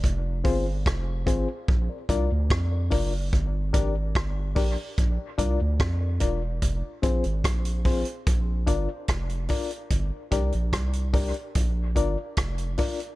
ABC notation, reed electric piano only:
X:1
M:4/4
L:1/16
Q:1/4=73
K:Bbmix
V:1 name="Reed electric piano"
z2 [CFAc] z3 [CFAc] z2 [Bd] [DFBd] z2 [Bd] [DFBd] z | z2 [DGBd] z3 [DGBd] z2 [Bd] [DFBd] z2 [Bd] [DFBd] z | z2 [CFAc] z3 [CFAc] z3 [DFBd] z3 [DFBd] z | z2 [DGBd] z3 [DGBd] z3 [DFBd] z3 [DFBd] z |]